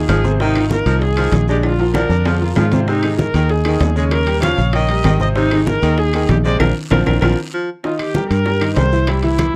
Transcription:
Already playing: D#3 D#4 F4
0.08 G#1 F3 G#4, high bongo, low bongo, high conga, high timbale, short guiro, claves
0.24 C3 C4 C5, high bongo, high conga, short guiro
0.40 C3 D#3 C4 D#4 C5, high bongo, long guiro
0.55 D#3 D#4 F4, high bongo, high conga, high timbale, claves
0.70 A#4, high bongo, high conga, short guiro
0.86 C2 D#3 F3 D#4 F4, high bongo, high timbale, short guiro
1.01 G#4, high bongo, high conga, long guiro
1.17 D#3 F3 D#4 F4, high conga, high timbale, claves
1.32 A#1, high bongo, low bongo, high conga, high timbale, short guiro
1.48 D3 G#3 D4 G4 D5, high bongo, high conga, short guiro
1.63 F4, high bongo, high conga, high timbale, long guiro, claves
1.79 F3 F4 A#4, high bongo, high conga, high timbale
1.94 D3 F3 D4 A#4 D5, high bongo, high conga, high timbale, short guiro, claves
2.09 F2 D3 D4 D5, high bongo, high conga, short guiro
2.25 F3 F4, high bongo, high conga, low timbale, long guiro
2.41 F3 F4 A#4, high conga
2.56 G#2 F3 F4, high bongo, low bongo, high conga, low timbale, short guiro, claves
2.72 C3 C4 C5, high conga, low timbale, short guiro
2.88 C3 C4 D#4 C5, high bongo, high conga, long guiro
3.03 D#3 D#4 G#4, high bongo, high conga, high timbale, claves
3.18 A#4, high bongo, high conga, short guiro
3.34 D#2 D#3 D#4 G#4, high bongo, high timbale, short guiro
3.49 G#4, high bongo, high conga, long guiro
3.65 D#3 D#4 G#4, high conga, high timbale, claves
3.80 D#2, high bongo, low bongo, high conga, high timbale, low timbale, short guiro
3.95 C#3 G#3 C#4 G#4 C#5, high bongo, high conga, short guiro
4.11 A#4, high bongo, high conga, high timbale, long guiro, claves
4.27 G3 G4 A#4, high bongo, high conga, high timbale
4.42 C#3 F3 C#4 C#5 F5, high bongo, high conga, high timbale, short guiro, claves
4.57 A#1 C#3 C#4 C#5, high bongo, high conga, short guiro
4.73 D#3 D#5, high bongo, high conga, high timbale, long guiro
4.89 G3 G4 A#4, high conga, high timbale
5.04 G#1 D#3, high bongo, low bongo, high conga, high timbale, low timbale, short guiro, claves
5.20 C3 C4 C5 D#5, high bongo, high conga, short guiro
5.35 C3 C4 D#4 C5, high bongo, high conga, long guiro
5.51 D#3 D#4 G#4, high bongo, high conga, high timbale, claves
5.67 A#4, high bongo, high conga, short guiro
5.82 D#2 D#3 D#4 G#4, high bongo, high timbale, short guiro
5.98 G#4, high bongo, high conga, long guiro
6.13 D#3 D#4 G#4, high conga, high timbale, claves
6.29 A#1 G4, high bongo, low bongo, high conga, high timbale, low timbale, short guiro
6.44 C3 G#3 C4 C5 D5, high bongo, high conga, short guiro
6.60 A#1 C4 D4 F4 A#4, low bongo, high conga, high timbale, long guiro, claves
6.91 A#1 F3 C4 D4 F4 A#4, low bongo, high conga, high timbale, long guiro, claves
7.06 A#1 C4 D4 F4 A#4, low bongo, high conga, high timbale, long guiro, claves
7.21 A#1 F3 C4 D4 F4 A#4, low bongo, high conga, high timbale, long guiro, claves
7.54 F3
7.84 D#3 D#4 F4 D#5, high bongo, high conga, long guiro
7.99 G4, high bongo, high conga, high timbale, claves
8.15 G3 G4 A#4, high bongo, high conga, short guiro
8.30 G2 A#4, high bongo, high timbale, short guiro
8.46 G3 G4 A#4, high bongo, high conga, long guiro
8.61 D#3 D#4 D#5, high conga, high timbale, claves
8.76 C2 G3 G4 A#4 C5, high bongo, low bongo, high conga, high timbale, low timbale, short guiro
8.92 E3 E4 E5, high bongo, high conga, short guiro
9.07 G3 E4 G4 C5, high bongo, high conga, high timbale, long guiro, claves
9.23 E3 E4 E5, high bongo, high conga, high timbale
9.39 high bongo, high conga, high timbale, short guiro, claves

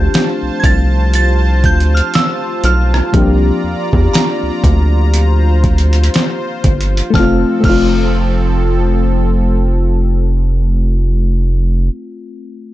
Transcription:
Already playing: F3 A3 C4 D4 F4 G4 C5 A5 G6
0.14 snare, closed hi-hat
0.43 C2
0.60 F5 G#6
0.64 C2 A6, kick, closed hi-hat
1.14 A6, closed hi-hat
1.64 D2 G6, kick, closed hi-hat
1.80 closed hi-hat
1.95 F6, closed hi-hat
2.14 E6, snare, closed hi-hat
2.64 B1 F6, closed hi-hat
2.94 cross-stick
3.12 C2 F3 A#3 C4 D4 D5 A#5, kick, closed hi-hat
3.17 G4
3.64 E2
3.93 E2, kick
4.13 A#5, snare, closed hi-hat
4.43 D2
4.64 D2, kick, closed hi-hat
5.14 C5, closed hi-hat
5.64 kick, closed hi-hat
5.78 closed hi-hat
5.93 closed hi-hat
6.04 closed hi-hat
6.14 snare, closed hi-hat
6.64 G1, kick, closed hi-hat, open hi-hat
6.81 closed hi-hat
6.97 closed hi-hat
7.10 F1 F3 A3 C4 A4 A5, kick
7.15 C4 F6, snare
7.19 F4
7.60 F1 A3, kick, crash
7.65 C4 F6
7.69 F4

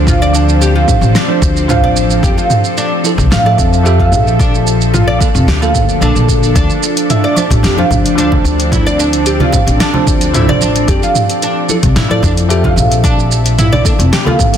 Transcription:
Already playing: D2 F3 C4 D4 A4 C5
0.07 F4, kick, mid tom, shaker
0.22 D5, shaker
0.35 D4, shaker
0.49 shaker
0.61 G4, shaker
0.75 F4
0.87 F3 D4 C5, kick, mid tom, shaker
1.01 A1, shaker
1.15 D4, snare, shaker
1.28 F3 D4 C5
1.42 D2, kick, shaker
1.57 shaker
1.68 F3 D4 F4 C5, mid tom, shaker
1.83 A1 D5
1.97 D4, shaker
2.11 shaker
2.23 F2 G4, kick, shaker
2.38 F4, shaker
2.50 mid tom, shaker
2.65 shaker
2.78 D4, shaker
2.82 E5
3.04 F3 E4 A4, shaker
3.18 C2, kick, shaker
3.30 A2 F4, snare, mid tom, shaker
3.44 F3 A4 D5 E5
3.58 F2 D4, kick, shaker
3.73 shaker
3.84 F3 G4 A4 E5, shaker
4.00 F4, kick
4.12 A#1, mid tom, shaker
4.27 shaker
4.39 D4, kick, shaker
4.50 D4
4.54 shaker
4.67 shaker
4.73 D5
4.78 A#3, shaker
4.94 F4, mid tom, shaker
5.08 D5
5.20 D3 A#3 D4 A4, kick, shaker
5.34 F1, shaker
5.47 D2 G4, snare, shaker
5.61 D3 A#3 F4 A4, shaker
5.75 kick, mid tom, shaker
5.89 shaker
6.01 A#1 D3 A#3 D4 A4, shaker
6.15 A#1, shaker
6.29 kick, shaker
6.43 shaker
6.55 D2 D4, kick, closed hi-hat, shaker
6.70 shaker
6.75 C4
6.83 shaker
6.97 closed hi-hat, shaker
7.10 E4, closed hi-hat, mid tom, shaker
7.24 D5
7.36 F3 D4 C5, muted conga, shaker
7.50 A1, kick, closed hi-hat, muted conga, shaker
7.63 F2 G4, snare, closed hi-hat, shaker
7.77 F3 D4 F4 C5, muted conga, high conga
7.90 D2, kick, mid tom, low conga, shaker
8.06 closed hi-hat, shaker
8.15 F3 D4 C5, closed hi-hat, shaker
8.32 kick, muted conga, low conga
8.44 D2, shaker
8.60 closed hi-hat, shaker
8.72 E4, kick, closed hi-hat, mid tom, shaker
8.87 D5, shaker
8.99 D4, shaker
9.13 closed hi-hat, shaker
9.26 G4, closed hi-hat, shaker
9.40 F4, high conga, low conga
9.53 F3 D4 C5, kick, mid tom, muted conga, shaker
9.67 A1, closed hi-hat, muted conga, shaker
9.80 D4, snare, closed hi-hat, shaker
9.93 F3 D4 C5, low conga
10.07 D2, kick, muted conga, shaker
10.21 closed hi-hat, high conga, shaker
10.33 F3 D4 E4 C5, closed hi-hat, mid tom, shaker
10.48 A1 D5, muted conga, low conga
10.61 D4, high conga, shaker
10.76 closed hi-hat, muted conga, shaker
10.88 F2 G4, kick, closed hi-hat, shaker
11.03 F4, shaker
11.15 mid tom, shaker
11.29 closed hi-hat, shaker
11.42 D4, closed hi-hat, shaker
11.68 F3 E4 A4, muted conga, shaker
11.83 C2 E5, kick, closed hi-hat, muted conga, shaker
11.96 A2 E4, snare, closed hi-hat, mid tom, shaker
12.09 F3 E4 A4 D5, muted conga, high conga
12.23 F2 D4, kick, low conga, shaker
12.37 closed hi-hat, shaker
12.48 F3 G4 A4 E5, closed hi-hat, shaker
12.64 F4, kick, muted conga, low conga
12.76 A#1, mid tom, shaker
12.92 closed hi-hat, shaker
13.04 D4, kick, closed hi-hat, shaker
13.19 shaker
13.32 shaker
13.44 A#3, closed hi-hat, shaker
13.57 D4 E4, closed hi-hat, mid tom, shaker
13.72 D5, high conga, low conga
13.84 D3 A#3 D4 A4, kick, muted conga, shaker
13.99 F1 D5, closed hi-hat, muted conga, shaker
14.13 G4, snare, closed hi-hat, shaker
14.25 D3 A#3 F4 A4, low conga
14.39 kick, mid tom, muted conga, shaker
14.54 closed hi-hat, high conga, shaker

